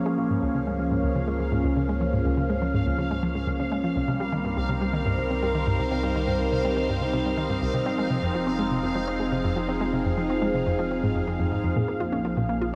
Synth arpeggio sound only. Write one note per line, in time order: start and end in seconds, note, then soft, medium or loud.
0.06 0.11 G#3 medium
0.18 0.29 F3 medium
0.30 0.39 G#2 medium
0.42 0.48 C#2 medium
0.55 0.66 C#3 medium
0.67 0.72 G#3 medium
0.79 0.91 F3 medium
0.91 1.00 G#2 medium
1.03 1.08 C#2 medium
1.15 1.27 C#3 medium
1.28 1.33 G#3 medium
1.40 1.52 F3 medium
1.52 1.61 G#2 medium
1.64 1.69 C#2 medium
1.77 1.88 C#3 medium
1.89 1.94 G#3 medium
2.01 2.12 F3 medium
2.13 2.22 G#2 medium
2.25 2.30 C#2 medium
2.37 2.49 C#3 medium
2.50 2.55 G#3 medium
2.62 2.73 F3 medium
2.74 2.83 G#2 medium
2.86 2.91 C#2 medium
2.98 3.10 C#3 medium
3.11 3.16 G#3 medium
3.23 3.34 F3 medium
3.35 3.44 G#2 medium
3.47 3.52 C#2 medium
3.60 3.71 C#3 medium
3.72 3.77 G#3 medium
3.84 3.95 F3 medium
3.96 4.01 C2 medium
4.08 4.20 C3 medium
4.20 4.25 G3 medium
4.33 4.44 D#3 medium
4.45 4.53 G2 medium
4.57 4.62 C2 medium
4.69 4.81 C3 medium
4.81 4.87 G3 medium
4.93 5.05 D#3 medium
5.06 5.14 G2 medium
5.18 5.23 C2 medium
5.30 5.42 C3 medium
5.43 5.48 G3 medium
5.55 5.66 D#3 medium
5.67 5.75 G2 medium
5.79 5.84 C2 medium
5.91 6.03 C3 medium
6.03 6.08 G3 medium
6.16 6.27 D#3 medium
6.28 6.36 G2 medium
6.40 6.45 C2 medium
6.52 6.64 C3 medium
6.65 6.70 G3 medium
6.77 6.88 D#3 medium
6.89 6.97 G2 medium
7.01 7.06 C2 medium
7.13 7.25 C3 medium
7.26 7.31 G3 medium
7.38 7.49 D#3 medium
7.50 7.58 G2 medium
7.62 7.67 C2 medium
7.74 7.86 C3 medium
7.86 7.91 C4 medium
7.98 8.10 G#3 medium
8.10 8.19 C3 medium
8.23 8.28 F2 medium
8.35 8.46 F3 medium
8.47 8.52 C4 medium
8.59 8.71 G#3 medium
8.71 8.80 C3 medium
8.83 8.89 F2 medium
8.95 9.07 F3 medium
9.08 9.13 C4 medium
9.20 9.32 G#3 medium
9.32 9.41 C3 medium
9.44 9.50 F2 medium
9.57 9.68 F3 medium
9.69 9.74 C4 medium
9.81 9.93 G#3 medium
9.93 10.02 C3 medium
10.05 10.11 F2 medium
10.18 10.29 F3 medium
10.30 10.35 C4 medium
10.42 10.54 G#3 medium
10.54 10.63 C3 medium
10.67 10.72 F2 medium
10.79 10.90 F3 medium
10.91 10.96 C4 medium
11.03 11.08 G#2 medium
11.15 11.21 F2 medium
11.27 11.36 F2 loud
11.40 11.51 F2 medium
11.52 11.60 G#2 medium
11.64 11.73 F2 medium
11.76 11.81 A#2 medium
11.88 12.00 A#3 medium
12.00 12.06 F4 medium
12.12 12.24 C#4 medium
12.25 12.34 F3 medium
12.37 12.42 A#2 medium
12.49 12.61 A#3 medium
12.62 12.67 F4 medium